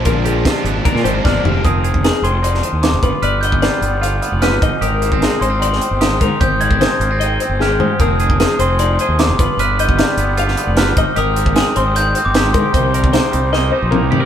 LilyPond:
<<
  \new Staff \with { instrumentName = "Glockenspiel" } { \time 4/4 \key aes \lydian \tempo 4 = 151 r2. f'''4 | ees'''4. c'''8 c'''4 d'''4 | f'''8 g'''2 r8 f'''4 | ees'''4. c'''8 c'''4 ees'''4 |
g'''8 aes'''2 r8 f'''4 | ees'''4. c'''8 c'''4 d'''4 | f'''8 g'''2 r8 f'''4 | ees'''4. c'''16 ees'''16 g'''8. d'''8. c'''8~ |
c'''2. r4 | }
  \new Staff \with { instrumentName = "Clean electric guitar" } { \time 4/4 \key aes \lydian bes'8 aes'8 g'4 bes'8 c''8 d''8 g'8 | bes'4 aes'8 c''8 d''8 c''4 b'8 | d''8 ees''8 d''4 f''8 d''8 b'8 ees''8 | bes'4 aes'8 c''8 d''8 c''4 bes'8 |
c''8 d''8 c''4 ees''8 c''8 aes'8 c''8 | bes'4 aes'8 c''8 d''8 c''4 b'8 | d''8 ees''8 d''4 f''8 d''8 b'8 ees''8 | bes'4 aes'8 c''8 d''8 c''4 bes'8 |
c''8 d''8 c''4 ees''8 c''8 bes'8 d''8 | }
  \new Staff \with { instrumentName = "Clean electric guitar" } { \time 4/4 \key aes \lydian << { f'8 g'8 f'8 d'8 d'16 f'16 g'16 bes'16 d'8 r8 | <c' ees' aes'>8 aes'8 ees'8 aes'8 ees'4. f'8 | b'8 b8 f'8 b8 f'8 b8 b'8 ees'8 | g'8 bes16 c'16 ees'8 bes16 c'16 ees'8 c'8 g'8 ees'8 |
g'8 bes16 c'16 ees'8 bes16 c'16 ees'8 c'8 g'8 ees'8 | <c' ees' aes'>8 aes'8 ees'8 aes'8 ees'8 aes'8 ees'8 f'8 | b'8 b8 f'8 b8 f'8 b8 b'8 ees'8 | g'8 c'8 ees'8 c'8 ees'8 c'8 g'8 ees'8 |
ees'8 bes'8 bes8 ees'8 bes8 ees'8 bes8 g'16 bes'16 | } \\ { <bes, f>4 f4 bes,4. bes,8 | f4. c'4 ees8 f8 g,8~ | g,4 g4 d4. aes,8~ | aes,4 aes4 ees4. aes,8~ |
aes,4 aes4 ees4. aes,8 | f4. c'4 c4 g,8~ | g,4 g4 d4. aes,8~ | aes,4 aes4 ees4. aes,8 |
c4. g4 g,4. | } >> }
  \new Staff \with { instrumentName = "Overdriven electric guitar" } { \clef bass \time 4/4 \key aes \lydian <bes, f aes d'>8 <f aes d'>8 <bes, f aes d'>8 <bes, f aes d'>8 <bes, f aes d'>8 <bes, f aes d'>8 <bes, f aes d'>8 <f aes d'>8 | r1 | r1 | r1 |
r1 | r1 | r1 | r1 |
r1 | }
  \new Staff \with { instrumentName = "Fingered electric bass" } { \clef bass \time 4/4 \key aes \lydian bes,,4. aes,,8 r16 bes,16 aes,,8 g,,8 f,,8 | f,,4. f,,4~ f,,16 ees,8 f,,16 g,,16 r16 | g,,4. g,,4~ g,,16 f,,8 g,,16 aes,,16 r16 | aes,,4. aes,,4~ aes,,16 g,,8 aes,,16 aes,16 r16 |
aes,,4. aes,,4~ aes,,16 g,,8 aes,,16 aes,16 r16 | f,,4. f,,4~ f,,16 ees,8 f,,16 g,,16 r16 | g,,4. g,,4~ g,,16 f,,8 g,,16 aes,,16 r16 | aes,,4. aes,,4~ aes,,16 g,,8 aes,,16 aes,16 r16 |
c,4. c,4~ c,16 bes,,8 c,16 c16 r16 | }
  \new DrumStaff \with { instrumentName = "Drums" } \drummode { \time 4/4 <hh bd>8 hh8 <hh bd sn>8 hh8 <hh bd>16 sn16 hh8 <bd sn>8 tomfh8 | <hh bd>8 hh16 bd16 <hh sn>8 hh8 hh16 sn16 hh8 <hh sn>8 <hh bd>8 | hh8 hh16 bd16 <hh sn>8 hh8 hh8 hh8 <hh sn>8 <hh bd>8 | hh8 hh16 bd16 <hh sn>8 hh8 hh16 sn16 hh8 <hh sn>8 <hh bd>8 |
<hh bd>8 hh16 bd16 <hh sn>8 hh8 hh8 hh8 sn8 tomfh8 | <hh bd>8 hh16 bd16 <hh sn>8 hh8 hh8 hh8 <hh sn>8 <hh bd>8 | hh8 hh16 bd16 <hh sn>8 hh8 hh16 sn16 hh8 <hh sn>8 <hh bd>8 | hh8 hh16 bd16 <hh sn>8 hh8 hh8 hh8 <hh sn>8 <hh bd>8 |
<hh bd>8 hh16 bd16 <hh sn>8 hh8 sn4 toml8 tomfh8 | }
>>